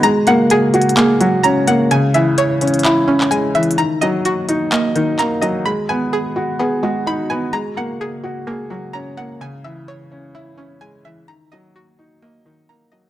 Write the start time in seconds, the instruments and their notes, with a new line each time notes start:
Already playing: analog synth pad G#3 F#4
0.03 analog synth pad C#3 A#3, felt piano G#3, synth pluck A#5, closed hi-hat
0.27 felt piano A#3, synth pluck F#5, closed hi-hat
0.50 synth pluck G#4, closed hi-hat
0.74 felt piano F#4, closed hi-hat
0.82 closed hi-hat
0.89 closed hi-hat
0.97 synth pluck A#3, felt piano G#4, clap, closed hi-hat
1.20 synth pluck F#3, felt piano F#4, closed hi-hat
1.43 felt piano C#4, synth pluck A#5, closed hi-hat
1.67 felt piano A#3, synth pluck F#5, closed hi-hat
1.91 felt piano C#3, analog synth pad E3 E4, synth pluck G#5, closed hi-hat
2.14 felt piano E3, synth pluck E5, closed hi-hat
2.38 synth pluck C#5, closed hi-hat
2.61 felt piano C#4, closed hi-hat
2.68 closed hi-hat
2.74 closed hi-hat
2.79 closed hi-hat
2.85 synth pluck E4, felt piano E4, clap, closed hi-hat
3.08 synth pluck C#4, felt piano C#4
3.21 clap
3.31 felt piano G#3, synth pluck G#5, closed hi-hat
3.55 felt piano E3, synth pluck E5, closed hi-hat
3.63 closed hi-hat
3.71 closed hi-hat
3.78 felt piano D#3, analog synth pad D#3 F#3 A#3 F#4, synth pluck A#5, closed hi-hat
4.01 felt piano F#3, synth pluck D#5, closed hi-hat
4.25 synth pluck F#4, closed hi-hat
4.49 felt piano D#4, closed hi-hat
4.72 synth pluck A#3, felt piano D#5, clap, closed hi-hat
4.95 synth pluck D#3, felt piano D#4, closed hi-hat
5.19 felt piano A#3, synth pluck A#5, clap, closed hi-hat
5.41 felt piano F#3, synth pluck D#5, closed hi-hat
5.65 analog synth pad G#3 B3, felt piano G#3, synth pluck B5
5.89 felt piano B3, synth pluck G#5
6.13 synth pluck G#4
6.36 felt piano F#4
6.59 synth pluck B3, felt piano G#4
6.83 synth pluck G#3, felt piano F#4
7.06 felt piano D#4, synth pluck B5
7.30 felt piano B3, synth pluck G#5
7.53 analog synth pad C#3 A#3, felt piano G#3, synth pluck A#5
7.77 felt piano A#3, synth pluck F#5
8.01 synth pluck G#4
8.24 felt piano F#4
8.47 synth pluck A#3, felt piano G#4
8.70 synth pluck F#3, felt piano F#4
8.93 felt piano C#4, synth pluck A#5
9.17 felt piano A#3, synth pluck F#5
9.41 felt piano C#3, analog synth pad E3 E4, synth pluck G#5
9.64 felt piano E3, synth pluck E5
9.88 synth pluck C#5
10.11 felt piano C#4
10.35 synth pluck E4, felt piano E4
10.58 synth pluck C#4, felt piano C#4
10.81 felt piano G#3, synth pluck G#5
11.05 felt piano E3, synth pluck E5
11.28 analog synth pad D#3 F#3 A#3 F#4, felt piano D#3, synth pluck A#5
11.52 felt piano F#3, synth pluck D#5
11.76 synth pluck F#4
11.99 felt piano D#4
12.22 synth pluck A#3, felt piano D#5
12.46 synth pluck D#3, felt piano D#4
12.69 felt piano A#3, synth pluck A#5
12.92 felt piano F#3, synth pluck D#5